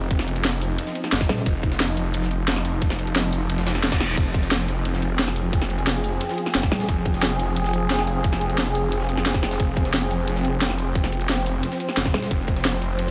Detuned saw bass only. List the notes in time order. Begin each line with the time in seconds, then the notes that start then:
Already playing: F1
1.12 F#1
1.46 F1
1.97 F1
2.14 F1
3.50 F1
3.84 F1
4.17 F1
4.68 F1
4.85 F1
6.55 F#1
6.89 F1
7.39 F1
7.56 F1
8.92 F1
9.60 F1
10.11 F1
10.28 F1
11.97 F#1
12.31 F1
12.82 F1
12.99 F1